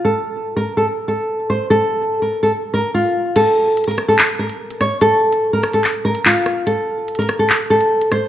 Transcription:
0, 0, Header, 1, 3, 480
1, 0, Start_track
1, 0, Tempo, 413793
1, 56, Time_signature, 4, 2, 24, 8
1, 9608, End_track
2, 0, Start_track
2, 0, Title_t, "Nylon-string guitar"
2, 0, Program_c, 0, 24
2, 53, Note_on_c, 0, 69, 91
2, 618, Note_off_c, 0, 69, 0
2, 656, Note_on_c, 0, 70, 83
2, 838, Note_off_c, 0, 70, 0
2, 894, Note_on_c, 0, 69, 76
2, 986, Note_off_c, 0, 69, 0
2, 1253, Note_on_c, 0, 69, 74
2, 1705, Note_off_c, 0, 69, 0
2, 1737, Note_on_c, 0, 72, 81
2, 1918, Note_off_c, 0, 72, 0
2, 1975, Note_on_c, 0, 69, 115
2, 2539, Note_off_c, 0, 69, 0
2, 2575, Note_on_c, 0, 70, 71
2, 2757, Note_off_c, 0, 70, 0
2, 2816, Note_on_c, 0, 69, 78
2, 2907, Note_off_c, 0, 69, 0
2, 3174, Note_on_c, 0, 70, 84
2, 3357, Note_off_c, 0, 70, 0
2, 3415, Note_on_c, 0, 65, 86
2, 3867, Note_off_c, 0, 65, 0
2, 3897, Note_on_c, 0, 69, 99
2, 4460, Note_off_c, 0, 69, 0
2, 4495, Note_on_c, 0, 70, 86
2, 4677, Note_off_c, 0, 70, 0
2, 4738, Note_on_c, 0, 69, 85
2, 4828, Note_off_c, 0, 69, 0
2, 5094, Note_on_c, 0, 70, 78
2, 5546, Note_off_c, 0, 70, 0
2, 5577, Note_on_c, 0, 73, 84
2, 5758, Note_off_c, 0, 73, 0
2, 5817, Note_on_c, 0, 69, 114
2, 6380, Note_off_c, 0, 69, 0
2, 6417, Note_on_c, 0, 70, 78
2, 6598, Note_off_c, 0, 70, 0
2, 6657, Note_on_c, 0, 69, 77
2, 6748, Note_off_c, 0, 69, 0
2, 7016, Note_on_c, 0, 70, 86
2, 7198, Note_off_c, 0, 70, 0
2, 7259, Note_on_c, 0, 65, 92
2, 7708, Note_off_c, 0, 65, 0
2, 7733, Note_on_c, 0, 69, 92
2, 8298, Note_off_c, 0, 69, 0
2, 8337, Note_on_c, 0, 70, 88
2, 8518, Note_off_c, 0, 70, 0
2, 8575, Note_on_c, 0, 69, 78
2, 8666, Note_off_c, 0, 69, 0
2, 8935, Note_on_c, 0, 69, 77
2, 9386, Note_off_c, 0, 69, 0
2, 9420, Note_on_c, 0, 72, 81
2, 9601, Note_off_c, 0, 72, 0
2, 9608, End_track
3, 0, Start_track
3, 0, Title_t, "Drums"
3, 3895, Note_on_c, 9, 42, 84
3, 3895, Note_on_c, 9, 49, 92
3, 4011, Note_off_c, 9, 42, 0
3, 4011, Note_off_c, 9, 49, 0
3, 4376, Note_on_c, 9, 42, 64
3, 4456, Note_off_c, 9, 42, 0
3, 4456, Note_on_c, 9, 42, 66
3, 4536, Note_off_c, 9, 42, 0
3, 4536, Note_on_c, 9, 42, 68
3, 4614, Note_off_c, 9, 42, 0
3, 4614, Note_on_c, 9, 42, 73
3, 4617, Note_on_c, 9, 37, 94
3, 4730, Note_off_c, 9, 42, 0
3, 4733, Note_off_c, 9, 37, 0
3, 4856, Note_on_c, 9, 39, 118
3, 4856, Note_on_c, 9, 42, 83
3, 4972, Note_off_c, 9, 39, 0
3, 4972, Note_off_c, 9, 42, 0
3, 5214, Note_on_c, 9, 42, 70
3, 5330, Note_off_c, 9, 42, 0
3, 5458, Note_on_c, 9, 42, 76
3, 5574, Note_off_c, 9, 42, 0
3, 5576, Note_on_c, 9, 37, 88
3, 5692, Note_off_c, 9, 37, 0
3, 5815, Note_on_c, 9, 42, 86
3, 5931, Note_off_c, 9, 42, 0
3, 6177, Note_on_c, 9, 42, 79
3, 6293, Note_off_c, 9, 42, 0
3, 6534, Note_on_c, 9, 42, 68
3, 6536, Note_on_c, 9, 37, 97
3, 6650, Note_off_c, 9, 42, 0
3, 6652, Note_off_c, 9, 37, 0
3, 6652, Note_on_c, 9, 42, 81
3, 6768, Note_off_c, 9, 42, 0
3, 6775, Note_on_c, 9, 39, 69
3, 6776, Note_on_c, 9, 42, 83
3, 6891, Note_off_c, 9, 39, 0
3, 6892, Note_off_c, 9, 42, 0
3, 7133, Note_on_c, 9, 42, 69
3, 7249, Note_off_c, 9, 42, 0
3, 7255, Note_on_c, 9, 39, 111
3, 7371, Note_off_c, 9, 39, 0
3, 7495, Note_on_c, 9, 37, 88
3, 7496, Note_on_c, 9, 42, 80
3, 7611, Note_off_c, 9, 37, 0
3, 7612, Note_off_c, 9, 42, 0
3, 7736, Note_on_c, 9, 42, 80
3, 7852, Note_off_c, 9, 42, 0
3, 8215, Note_on_c, 9, 42, 68
3, 8295, Note_off_c, 9, 42, 0
3, 8295, Note_on_c, 9, 42, 66
3, 8375, Note_off_c, 9, 42, 0
3, 8375, Note_on_c, 9, 42, 67
3, 8454, Note_off_c, 9, 42, 0
3, 8454, Note_on_c, 9, 42, 73
3, 8457, Note_on_c, 9, 37, 96
3, 8570, Note_off_c, 9, 42, 0
3, 8573, Note_off_c, 9, 37, 0
3, 8695, Note_on_c, 9, 39, 117
3, 8696, Note_on_c, 9, 42, 81
3, 8811, Note_off_c, 9, 39, 0
3, 8812, Note_off_c, 9, 42, 0
3, 9055, Note_on_c, 9, 42, 71
3, 9171, Note_off_c, 9, 42, 0
3, 9298, Note_on_c, 9, 42, 74
3, 9414, Note_off_c, 9, 42, 0
3, 9415, Note_on_c, 9, 37, 86
3, 9531, Note_off_c, 9, 37, 0
3, 9608, End_track
0, 0, End_of_file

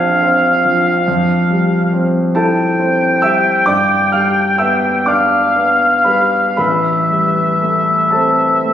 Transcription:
0, 0, Header, 1, 3, 480
1, 0, Start_track
1, 0, Tempo, 853485
1, 605, Time_signature, 12, 3, 24, 8
1, 1569, Tempo, 903614
1, 2529, Tempo, 961538
1, 3009, Tempo, 1030928
1, 4487, End_track
2, 0, Start_track
2, 0, Title_t, "Oboe"
2, 0, Program_c, 0, 68
2, 0, Note_on_c, 0, 77, 74
2, 1178, Note_off_c, 0, 77, 0
2, 1326, Note_on_c, 0, 79, 72
2, 2770, Note_on_c, 0, 77, 59
2, 2778, Note_off_c, 0, 79, 0
2, 3487, Note_off_c, 0, 77, 0
2, 3492, Note_on_c, 0, 76, 49
2, 4487, Note_off_c, 0, 76, 0
2, 4487, End_track
3, 0, Start_track
3, 0, Title_t, "Grand piano"
3, 0, Program_c, 1, 0
3, 0, Control_c, 1, 64, 127
3, 0, Note_on_c, 1, 34, 49
3, 0, Note_on_c, 1, 53, 35
3, 0, Note_on_c, 1, 60, 42
3, 0, Note_on_c, 1, 62, 41
3, 0, Note_on_c, 1, 72, 52
3, 0, Note_on_c, 1, 84, 72
3, 126, Note_off_c, 1, 60, 0
3, 126, Note_on_c, 1, 60, 40
3, 271, Note_off_c, 1, 62, 0
3, 344, Note_off_c, 1, 72, 0
3, 364, Note_off_c, 1, 84, 0
3, 366, Note_off_c, 1, 53, 0
3, 366, Note_on_c, 1, 53, 35
3, 509, Note_off_c, 1, 60, 0
3, 584, Note_off_c, 1, 34, 0
3, 605, Note_off_c, 1, 53, 0
3, 605, Note_on_c, 1, 41, 48
3, 614, Control_c, 1, 64, 0
3, 690, Control_c, 1, 64, 127
3, 845, Note_on_c, 1, 55, 35
3, 1084, Note_on_c, 1, 60, 35
3, 1227, Note_off_c, 1, 55, 0
3, 1321, Note_on_c, 1, 81, 66
3, 1324, Note_on_c, 1, 69, 50
3, 1325, Note_on_c, 1, 64, 39
3, 1472, Note_off_c, 1, 60, 0
3, 1572, Note_on_c, 1, 60, 39
3, 1710, Note_off_c, 1, 64, 0
3, 1782, Note_off_c, 1, 69, 0
3, 1797, Note_on_c, 1, 88, 72
3, 1802, Note_off_c, 1, 81, 0
3, 1803, Note_on_c, 1, 55, 35
3, 1807, Note_on_c, 1, 76, 53
3, 1945, Note_off_c, 1, 60, 0
3, 2017, Note_off_c, 1, 41, 0
3, 2023, Note_off_c, 1, 76, 0
3, 2031, Note_on_c, 1, 86, 77
3, 2035, Note_off_c, 1, 88, 0
3, 2035, Note_on_c, 1, 43, 44
3, 2038, Note_off_c, 1, 55, 0
3, 2038, Note_on_c, 1, 74, 55
3, 2046, Control_c, 1, 64, 0
3, 2145, Control_c, 1, 64, 127
3, 2262, Note_off_c, 1, 74, 0
3, 2275, Note_off_c, 1, 86, 0
3, 2276, Note_on_c, 1, 89, 68
3, 2282, Note_on_c, 1, 77, 52
3, 2283, Note_on_c, 1, 55, 33
3, 2513, Note_off_c, 1, 77, 0
3, 2522, Note_on_c, 1, 88, 64
3, 2527, Note_off_c, 1, 89, 0
3, 2527, Note_on_c, 1, 59, 36
3, 2528, Note_on_c, 1, 76, 47
3, 2674, Note_off_c, 1, 55, 0
3, 2750, Note_off_c, 1, 76, 0
3, 2760, Note_on_c, 1, 86, 64
3, 2763, Note_on_c, 1, 62, 35
3, 2764, Note_off_c, 1, 88, 0
3, 2765, Note_on_c, 1, 74, 49
3, 2911, Note_off_c, 1, 59, 0
3, 3011, Note_on_c, 1, 59, 32
3, 3146, Note_off_c, 1, 62, 0
3, 3223, Note_off_c, 1, 74, 0
3, 3235, Note_on_c, 1, 83, 57
3, 3238, Note_on_c, 1, 55, 31
3, 3239, Note_off_c, 1, 86, 0
3, 3241, Note_on_c, 1, 71, 39
3, 3388, Note_off_c, 1, 59, 0
3, 3466, Note_off_c, 1, 43, 0
3, 3468, Note_off_c, 1, 71, 0
3, 3473, Note_off_c, 1, 83, 0
3, 3480, Note_on_c, 1, 83, 64
3, 3484, Note_off_c, 1, 55, 0
3, 3484, Note_on_c, 1, 71, 46
3, 3485, Note_on_c, 1, 33, 41
3, 3496, Control_c, 1, 64, 0
3, 3592, Control_c, 1, 64, 127
3, 3726, Note_on_c, 1, 55, 27
3, 3961, Note_on_c, 1, 57, 27
3, 4109, Note_off_c, 1, 55, 0
3, 4188, Note_off_c, 1, 71, 0
3, 4195, Note_on_c, 1, 81, 46
3, 4202, Note_on_c, 1, 60, 32
3, 4202, Note_on_c, 1, 69, 33
3, 4204, Note_off_c, 1, 83, 0
3, 4349, Note_off_c, 1, 57, 0
3, 4446, Note_on_c, 1, 57, 28
3, 4487, Note_off_c, 1, 33, 0
3, 4487, Note_off_c, 1, 57, 0
3, 4487, Note_off_c, 1, 60, 0
3, 4487, Note_off_c, 1, 69, 0
3, 4487, Note_off_c, 1, 81, 0
3, 4487, End_track
0, 0, End_of_file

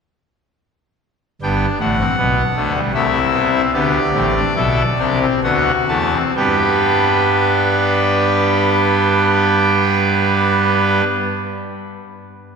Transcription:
0, 0, Header, 1, 2, 480
1, 0, Start_track
1, 0, Key_signature, 1, "major"
1, 0, Tempo, 752823
1, 909, Time_signature, 3, 2, 24, 8
1, 1875, Tempo, 804290
1, 2835, Tempo, 869565
1, 3315, Tempo, 930233
1, 3795, Tempo, 960000
1, 6899, End_track
2, 0, Start_track
2, 0, Title_t, "Pipe organ"
2, 0, Program_c, 0, 19
2, 903, Note_on_c, 0, 31, 55
2, 907, Note_on_c, 0, 79, 56
2, 908, Note_on_c, 0, 59, 56
2, 909, Note_on_c, 0, 62, 55
2, 910, Note_on_c, 0, 43, 55
2, 1053, Note_off_c, 0, 31, 0
2, 1056, Note_off_c, 0, 79, 0
2, 1057, Note_off_c, 0, 59, 0
2, 1058, Note_off_c, 0, 43, 0
2, 1136, Note_off_c, 0, 62, 0
2, 1145, Note_on_c, 0, 45, 54
2, 1148, Note_on_c, 0, 33, 53
2, 1148, Note_on_c, 0, 62, 56
2, 1148, Note_on_c, 0, 78, 55
2, 1251, Note_off_c, 0, 62, 0
2, 1272, Note_on_c, 0, 60, 53
2, 1295, Note_off_c, 0, 45, 0
2, 1297, Note_off_c, 0, 33, 0
2, 1374, Note_off_c, 0, 60, 0
2, 1390, Note_on_c, 0, 59, 54
2, 1391, Note_on_c, 0, 47, 52
2, 1392, Note_on_c, 0, 35, 53
2, 1540, Note_off_c, 0, 59, 0
2, 1541, Note_off_c, 0, 35, 0
2, 1541, Note_off_c, 0, 47, 0
2, 1634, Note_on_c, 0, 38, 50
2, 1634, Note_on_c, 0, 50, 55
2, 1634, Note_on_c, 0, 57, 51
2, 1738, Note_off_c, 0, 57, 0
2, 1753, Note_on_c, 0, 55, 52
2, 1774, Note_off_c, 0, 78, 0
2, 1785, Note_off_c, 0, 38, 0
2, 1785, Note_off_c, 0, 50, 0
2, 1859, Note_off_c, 0, 55, 0
2, 1871, Note_on_c, 0, 36, 59
2, 1872, Note_on_c, 0, 57, 59
2, 1874, Note_on_c, 0, 64, 56
2, 1875, Note_on_c, 0, 48, 57
2, 1875, Note_on_c, 0, 76, 58
2, 2017, Note_off_c, 0, 57, 0
2, 2109, Note_on_c, 0, 59, 55
2, 2210, Note_off_c, 0, 59, 0
2, 2233, Note_on_c, 0, 60, 56
2, 2276, Note_off_c, 0, 36, 0
2, 2278, Note_off_c, 0, 64, 0
2, 2278, Note_off_c, 0, 76, 0
2, 2279, Note_off_c, 0, 48, 0
2, 2332, Note_off_c, 0, 60, 0
2, 2350, Note_on_c, 0, 50, 63
2, 2350, Note_on_c, 0, 74, 66
2, 2351, Note_on_c, 0, 59, 62
2, 2352, Note_on_c, 0, 67, 64
2, 2353, Note_on_c, 0, 38, 62
2, 2498, Note_off_c, 0, 50, 0
2, 2499, Note_off_c, 0, 59, 0
2, 2500, Note_off_c, 0, 38, 0
2, 2592, Note_on_c, 0, 33, 61
2, 2592, Note_on_c, 0, 60, 66
2, 2593, Note_on_c, 0, 45, 63
2, 2696, Note_off_c, 0, 60, 0
2, 2725, Note_on_c, 0, 62, 59
2, 2745, Note_off_c, 0, 33, 0
2, 2745, Note_off_c, 0, 45, 0
2, 2771, Note_off_c, 0, 67, 0
2, 2826, Note_off_c, 0, 62, 0
2, 2838, Note_on_c, 0, 69, 64
2, 2840, Note_on_c, 0, 47, 63
2, 2841, Note_on_c, 0, 64, 66
2, 2844, Note_on_c, 0, 35, 60
2, 2984, Note_off_c, 0, 69, 0
2, 2986, Note_off_c, 0, 47, 0
2, 2986, Note_off_c, 0, 64, 0
2, 2989, Note_off_c, 0, 35, 0
2, 3075, Note_on_c, 0, 36, 60
2, 3076, Note_on_c, 0, 48, 60
2, 3080, Note_on_c, 0, 67, 62
2, 3081, Note_on_c, 0, 62, 65
2, 3181, Note_off_c, 0, 62, 0
2, 3188, Note_off_c, 0, 74, 0
2, 3199, Note_on_c, 0, 60, 62
2, 3225, Note_off_c, 0, 36, 0
2, 3226, Note_off_c, 0, 48, 0
2, 3229, Note_off_c, 0, 67, 0
2, 3302, Note_off_c, 0, 60, 0
2, 3321, Note_on_c, 0, 38, 70
2, 3321, Note_on_c, 0, 50, 64
2, 3322, Note_on_c, 0, 59, 66
2, 3323, Note_on_c, 0, 78, 71
2, 3324, Note_on_c, 0, 66, 66
2, 3465, Note_off_c, 0, 38, 0
2, 3466, Note_off_c, 0, 50, 0
2, 3466, Note_off_c, 0, 59, 0
2, 3467, Note_off_c, 0, 78, 0
2, 3555, Note_on_c, 0, 40, 56
2, 3555, Note_on_c, 0, 57, 58
2, 3555, Note_on_c, 0, 81, 58
2, 3557, Note_on_c, 0, 52, 60
2, 3658, Note_off_c, 0, 57, 0
2, 3681, Note_on_c, 0, 60, 58
2, 3705, Note_off_c, 0, 40, 0
2, 3705, Note_off_c, 0, 81, 0
2, 3707, Note_off_c, 0, 52, 0
2, 3734, Note_off_c, 0, 66, 0
2, 3783, Note_off_c, 0, 60, 0
2, 3800, Note_on_c, 0, 43, 58
2, 3801, Note_on_c, 0, 55, 54
2, 3801, Note_on_c, 0, 59, 53
2, 3801, Note_on_c, 0, 67, 54
2, 3802, Note_on_c, 0, 79, 54
2, 3816, Note_on_c, 0, 62, 46
2, 3817, Note_on_c, 0, 71, 49
2, 6126, Note_off_c, 0, 43, 0
2, 6126, Note_off_c, 0, 55, 0
2, 6126, Note_off_c, 0, 59, 0
2, 6126, Note_off_c, 0, 67, 0
2, 6127, Note_off_c, 0, 79, 0
2, 6141, Note_off_c, 0, 62, 0
2, 6142, Note_off_c, 0, 71, 0
2, 6899, End_track
0, 0, End_of_file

